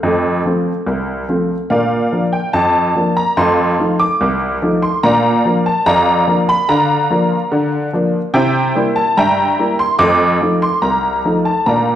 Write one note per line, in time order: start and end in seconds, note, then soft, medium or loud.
0.00 0.39 F2 medium
0.00 0.85 A4 medium
0.00 0.84 C5 medium
0.00 0.84 F5 medium
0.05 0.28 A3 soft
0.45 0.68 F3 soft
0.45 0.69 A3 soft
0.45 0.69 C4 soft
0.87 1.22 C2 medium
1.29 1.52 F3 soft
1.29 1.52 A3 soft
1.29 1.52 C4 soft
1.70 2.06 A#2 medium
1.70 1.95 D4 soft
1.70 2.30 A#4 medium
1.70 2.29 D5 medium
1.70 2.20 F5 medium
2.12 2.35 F3 soft
2.12 2.35 A#3 soft
2.12 2.36 D4 soft
2.33 2.54 G5 medium
2.53 2.89 F2 medium
2.53 3.13 A5 medium
2.95 3.18 F3 soft
2.95 3.19 A#3 medium
2.95 3.19 D4 medium
3.17 3.37 A#5 medium
3.37 3.73 F2 medium
3.37 3.61 A3 soft
3.37 3.96 F5 medium
3.37 3.96 A5 medium
3.37 3.96 C6 medium
3.79 4.02 F3 soft
3.79 4.02 A3 soft
3.79 4.02 D#4 soft
4.00 4.66 D6 medium
4.21 4.56 C2 medium
4.62 4.85 F3 medium
4.62 4.85 A3 soft
4.62 4.86 D#4 medium
4.82 5.03 C6 medium
5.03 5.39 A#2 medium
5.03 5.27 D4 medium
5.03 5.62 D5 medium
5.03 5.62 F5 medium
5.03 5.53 A#5 medium
5.45 5.68 F3 medium
5.45 5.68 A#3 soft
5.45 5.69 D4 medium
5.66 5.87 A5 medium
5.86 6.22 F2 medium
5.86 6.45 D5 medium
5.86 6.45 F5 medium
5.86 6.36 A#5 loud
6.27 6.50 F3 medium
6.27 6.50 A#3 soft
6.27 6.51 D4 medium
6.49 6.69 B5 loud
6.69 7.04 D3 medium
6.69 7.90 D5 medium
6.69 7.90 F5 medium
6.69 7.69 A#5 medium
7.10 7.33 F3 medium
7.10 7.33 A#3 medium
7.10 7.33 D4 medium
7.52 7.87 D3 medium
7.93 8.16 F3 soft
7.93 8.17 A#3 soft
7.93 8.17 D4 medium
8.34 8.69 C3 medium
8.34 8.58 E4 medium
8.34 8.93 C5 medium
8.34 8.93 E5 medium
8.34 8.84 G5 medium
8.75 8.98 G3 medium
8.75 8.98 A#3 medium
8.75 8.99 E4 medium
8.96 9.17 A5 medium
9.17 9.53 G2 medium
9.17 9.76 E5 medium
9.17 9.76 G5 medium
9.17 9.77 A#5 medium
9.59 9.82 G3 soft
9.59 9.82 A#3 soft
9.59 9.82 E4 medium
9.79 10.00 C6 medium
9.99 10.35 F2 medium
9.99 10.24 A3 medium
9.99 10.59 D6 loud
10.41 10.64 F3 soft
10.41 10.65 A3 soft
10.41 10.65 D#4 soft
10.62 10.83 C6 medium
10.82 11.19 C2 medium
10.82 11.33 A#5 medium
11.25 11.48 F3 soft
11.25 11.49 A3 soft
11.25 11.49 D#4 medium
11.45 11.67 A5 medium
11.66 11.96 A#2 medium
11.66 11.92 D4 soft
11.66 11.96 D5 medium
11.66 11.96 F5 medium
11.66 11.96 A#5 medium